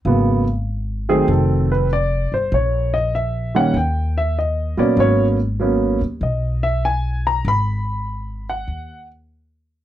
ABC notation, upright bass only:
X:1
M:4/4
L:1/8
Q:"Swing" 1/4=97
K:G#m
V:1 name="Upright bass" clef=bass
G,,,4 =F,,,3 =G,,, | A,,,4 D,,3 A,,, | G,,,3 D,, B,,,4 | G,,,4 D,,4 |]